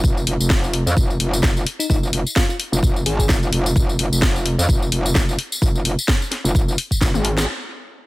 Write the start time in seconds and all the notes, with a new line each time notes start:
0.04 F1, kick, tambourine
0.17 tambourine
0.27 F1, open hi-hat
0.40 F1, tambourine
0.50 kick, snare
0.64 tambourine
0.73 open hi-hat
0.86 F2, tambourine
0.97 F1, kick, tambourine
1.10 tambourine
1.20 F1, open hi-hat
1.33 tambourine
1.43 F1, kick, snare, tambourine
1.57 tambourine
1.67 open hi-hat
1.79 D#4, tambourine
1.90 F1 D#4, kick, tambourine
2.03 tambourine
2.13 F1, open hi-hat
2.27 tambourine
2.36 F4, kick, snare, tambourine
2.49 F4, tambourine
2.60 open hi-hat
2.72 F1, tambourine
2.83 F1, kick, tambourine
2.96 tambourine
3.06 G#1 G#4, open hi-hat
3.19 G#4, kick, tambourine
3.29 F1, kick, snare, tambourine
3.43 tambourine
3.53 F1, open hi-hat
3.66 tambourine
3.76 F1, kick, tambourine
3.89 tambourine
3.99 F1, open hi-hat
4.12 F1, tambourine
4.22 kick, snare, tambourine
4.36 tambourine
4.46 open hi-hat
4.58 F2, tambourine
4.69 F1, kick, tambourine
4.82 tambourine
4.92 F1, open hi-hat
5.06 tambourine
5.15 F1, kick, snare, tambourine
5.29 tambourine
5.39 open hi-hat
5.52 tambourine
5.62 F1, kick, tambourine
5.75 tambourine
5.85 F1, open hi-hat
5.99 tambourine
6.08 kick, snare, tambourine
6.22 tambourine
6.31 snare, open hi-hat
6.44 F1, tambourine
6.55 F1, kick, tambourine
6.68 tambourine
6.78 open hi-hat
6.91 kick, tambourine
7.01 F1, kick, snare, tambourine
7.14 G#1, high tom, tambourine
7.25 open hi-hat
7.37 snare, tambourine
7.71 open hi-hat